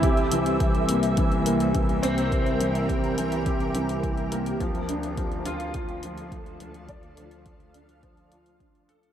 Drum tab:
HH |xxxxxxxxxxxxxxxx|xxxxxxxxxxxxxxxx|xxxxxxxxxxxxxxxx|xxxxxxxxxxxxxxxx|
BD |o---o---o---o---|o---o---o---o---|o---o---o---o---|o---o---o---o---|